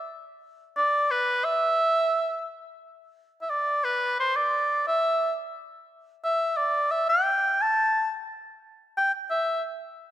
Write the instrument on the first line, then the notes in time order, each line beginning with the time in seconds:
oboe
0.77 D5
1.11 B4
1.45 E5
3.42 E5
3.50 D5
3.84 B4
4.20 C5
4.36 D5
4.87 E5
6.24 E5
6.57 D5
6.91 E5
7.09 G5
7.62 A5
8.97 G5
9.31 E5